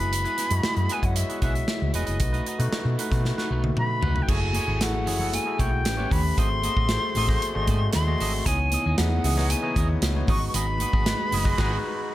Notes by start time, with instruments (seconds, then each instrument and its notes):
Already playing: fingered electric bass F#1, tine electric piano G#3 E4 F#4 B4, flute B5
0.00 clean electric guitar B3 E4 G#4 B4, closed hi-hat
0.12 muted clean electric guitar stroke, closed hi-hat
0.25 clean electric guitar B3 E4 G#4 B4, closed hi-hat
0.38 clean electric guitar B3 E4 G#4 B4, snare, closed hi-hat
0.51 fingered electric bass F#2, tine electric piano G#3 E4 F#4 G#4, muted clean electric guitar stroke, closed hi-hat
0.63 muted fingered electric bass stroke, snare
0.76 fingered electric bass F#2, muted clean electric guitar stroke, closed hi-hat
0.89 clean electric guitar B3 E4 G#4 B4, flute G#5, closed hi-hat
1.03 fingered electric bass F#2, tine electric piano G#3 E4 F#4 C#5, flute F#5, muted clean electric guitar stroke, kick, closed hi-hat
1.16 flute E5, muted clean electric guitar stroke, closed hi-hat
1.29 clean electric guitar B3 E4 G#4 B4, closed hi-hat
1.42 fingered electric bass B1, clean electric guitar B3 E4 G#4 B4, flute E5, kick, closed hi-hat
1.55 muted clean electric guitar stroke, closed hi-hat
1.68 muted clean electric guitar stroke, snare
1.81 fingered electric bass C#2, muted clean electric guitar stroke
1.94 fingered electric bass E1, clean electric guitar B3 E4 G#4 B4, flute D#5, closed hi-hat
2.06 fingered electric bass F#1, clean electric guitar B3 E4 G#4 B4, closed hi-hat
2.20 fingered electric bass B1, tine electric piano A3 D#4 F#4 B4, muted clean electric guitar stroke, kick, closed hi-hat
2.33 clean electric guitar A3 D#4 F#4 B4, closed hi-hat
2.46 clean electric guitar A3 D#4 F#4 B4, closed hi-hat
2.59 fingered electric bass B2, tine electric piano A3 D#4 F#4 B4, muted clean electric guitar stroke, closed hi-hat
2.72 muted fingered electric bass stroke, snare
2.85 fingered electric bass B2, muted clean electric guitar stroke
2.98 clean electric guitar A3 D#4 F#4 B4, closed hi-hat
3.11 fingered electric bass B2, tine electric piano A3 D#4 F#4 B4, kick, snare, closed hi-hat
3.25 muted clean electric guitar stroke, snare
3.38 clean electric guitar A3 D#4 F#4 B4, snare
3.51 fingered electric bass B1, clean electric guitar A3 D#4 F#4 B4
3.64 muted clean electric guitar stroke, high tom
3.76 flute B5, muted clean electric guitar stroke, mid tom
3.89 muted clean electric guitar stroke
4.01 fingered electric bass C#2, clean electric guitar A3 D#4 F#4 B4, floor tom
4.15 clean electric guitar A3 D#4 F#4 B4, floor tom
4.22 flute G5
4.27 fingered electric bass F#1, clean electric guitar A3 E4 G#4 C#5, tine electric piano E4 F#4 G#4 A4, flute G#5, kick, crash, muted conga
4.40 muted clean electric guitar stroke
4.53 clean electric guitar A3 E4 G#4 C#5, closed hi-hat, muted conga, high conga
4.66 fingered electric bass G#1, clean electric guitar A3 E4 G#4 C#5
4.80 fingered electric bass A1, tine electric piano E4 F#4 G#4 A4, flute F#5, muted clean electric guitar stroke, snare, closed hi-hat
4.93 muted clean electric guitar stroke, high conga
5.06 fingered electric bass F#1, clean electric guitar A3 E4 G#4 C#5, open hi-hat, muted conga, low conga
5.19 tine electric piano G#3 E4 F#4 A4, clean electric guitar A3 E4 G#4 C#5, low conga
5.32 flute G#5, muted clean electric guitar stroke, closed hi-hat, muted conga, high conga
5.46 tine electric piano E4 F#4 G#4 A4, muted clean electric guitar stroke
5.59 fingered electric bass B1, clean electric guitar A3 E4 G#4 C#5, flute G5, kick, closed hi-hat, muted conga, high conga
5.72 muted clean electric guitar stroke
5.85 fingered electric bass A1, tine electric piano A3 C#4 G4 B4, snare, closed hi-hat
5.97 tine electric piano A3 C#4 G4 B4, clean electric guitar B3 E4 G4 C#5, high conga
6.10 fingered electric bass D#2, clean electric guitar B3 E4 G4 C#5, flute B5, kick, open hi-hat, muted conga, low conga
6.23 muted clean electric guitar stroke
6.37 fingered electric bass G#1, tine electric piano A3 F#4 G#4 C5, clean electric guitar C4 F#4 A4 D#5, flute C6, kick, closed hi-hat, muted conga
6.50 muted clean electric guitar stroke
6.62 clean electric guitar C4 F#4 A4 D#5, closed hi-hat, muted conga, high conga
6.77 fingered electric bass A1, clean electric guitar C4 F#4 A4 D#5, kick
6.89 tine electric piano A3 F#4 G#4 C5, muted clean electric guitar stroke, snare, closed hi-hat
7.01 muted clean electric guitar stroke, high conga
7.15 fingered electric bass A1, clean electric guitar C4 F#4 A4 D#5, open hi-hat, muted conga, low conga
7.27 tine electric piano A3 F#4 G#4 C5, clean electric guitar C4 F#4 A4 D#5, kick, snare, low conga
7.41 muted clean electric guitar stroke, closed hi-hat, muted conga, high conga
7.54 fingered electric bass G#1, tine electric piano A3 F#4 G#4 D5, muted clean electric guitar stroke
7.62 tine electric piano D#5
7.67 fingered electric bass G#2, clean electric guitar C4 F#4 A4 D#5, kick, closed hi-hat, muted conga, high conga
7.81 muted clean electric guitar stroke
7.93 fingered electric bass D#2, flute C6, muted clean electric guitar stroke, snare, closed hi-hat
8.07 tine electric piano A3 F#4 G#4 D#5, muted clean electric guitar stroke, high conga
8.18 fingered electric bass G#1, clean electric guitar C4 F#4 A4 D#5, open hi-hat, muted conga, low conga
8.34 muted clean electric guitar stroke
8.44 fingered electric bass C#2, string machine C#3 E3 B3 D#5, tine electric piano B3 D#4 E4 C#5, clean electric guitar B3 E4, flute G#5, kick, closed hi-hat
8.48 clean electric guitar G#4 D#5
8.60 muted clean electric guitar stroke
8.70 clean electric guitar B3 E4 G#4, closed hi-hat, high conga
8.74 clean electric guitar D#5
8.86 fingered electric bass D#2, clean electric guitar B3 E4 G#4 D#5
8.97 fingered electric bass E2, tine electric piano B3 D#4 E4 G#4, flute F#5, muted clean electric guitar stroke, snare, closed hi-hat, muted conga
9.09 muted clean electric guitar stroke, high conga
9.24 fingered electric bass C#2, clean electric guitar B3 E4 G#4 D#5, open hi-hat, muted conga, low conga
9.36 tine electric piano B3 D#4 E4 C#5, clean electric guitar B3 E4 G#4 D#5, snare, low conga
9.49 flute G#5, muted clean electric guitar stroke, closed hi-hat, high conga
9.62 tine electric piano B3 D#4 E4 C#5, clean electric guitar B3 E4 G#4 D#5
9.75 fingered electric bass D#2, clean electric guitar B3 E4 G#4 D#5, kick, closed hi-hat, muted conga, high conga
9.89 muted clean electric guitar stroke
10.02 fingered electric bass C#2, muted clean electric guitar stroke, snare, closed hi-hat
10.15 tine electric piano B3 D#4 E4 C#5, muted clean electric guitar stroke, high conga
10.27 fingered electric bass G#1, tine electric piano G#3 D#4 F#4 B4, string machine G#3 D#4 F#4 B4, clean electric guitar B3 F#4 G#4 D#5, flute C#6, kick, open hi-hat, muted conga, low conga
10.41 muted clean electric guitar stroke
10.48 flute C#6
10.54 fingered electric bass G#1, clean electric guitar B3 F#4 G#4 D#5, flute B5, closed hi-hat, muted conga
10.67 muted clean electric guitar stroke
10.78 clean electric guitar B3 F#4 G#4 D#5, closed hi-hat, high conga
10.93 fingered electric bass G#1, clean electric guitar B3 F#4 G#4 D#5, kick
11.05 tine electric piano G#3 D#4 F#4 B4, muted clean electric guitar stroke, snare, closed hi-hat, muted conga
11.17 muted clean electric guitar stroke, high conga
11.31 fingered electric bass F#1, clean electric guitar B3 F#4 G#4 D#5, open hi-hat, muted conga, low conga
11.44 tine electric piano G#3 D#4 F#4 B4, clean electric guitar B3 F#4 G#4 D#5, kick, snare, low conga
11.57 fingered electric bass G#1, tine electric piano G#3 D#4 F#4 B4, horn section G#3 B3 F#4 B4, clean electric guitar B3 F#4 G#4 D#5, kick, snare, crash
12.11 string machine A3 B3 E4